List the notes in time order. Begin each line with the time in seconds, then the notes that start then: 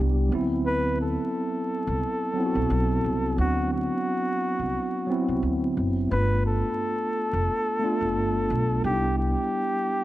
Already playing: C2 G3 B3 D4 G4
0.29 D2 F#3 B3
0.33 C4 E4
0.67 B4
1.01 A4
1.87 C2
2.34 F#3 B3 C4
2.39 E4
2.46 F#4
2.55 B1
2.70 B1
3.04 C2
3.37 D2 F#3 B3 C4 F#4
3.42 D4
3.73 F#4
4.59 C2
5.07 F#3 B3 C4
5.12 E4
5.28 C2
5.43 D2
5.77 F#1
6.09 G1 A3 B3 D4 B4
6.14 F4
6.46 A4
7.33 F1
7.80 A3 B3 D4
7.85 F4
8.01 F1
8.16 G1
8.50 B1
8.82 C2 G3 B3 D4 G4
8.87 D#4
8.94 E4
9.18 G4